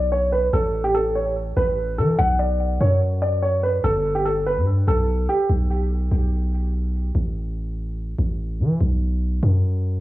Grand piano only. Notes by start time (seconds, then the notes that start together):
0.12 C#5
0.32 B4
0.53 A4
0.84 G4
0.94 A4
1.15 C#5
1.57 B4
1.98 A4
2.18 F#5
2.39 D5
2.81 C#5
3.22 D5
3.43 C#5
3.63 B4
3.84 A4
4.15 G4
4.25 A4
4.46 B4
4.88 A4
5.29 G4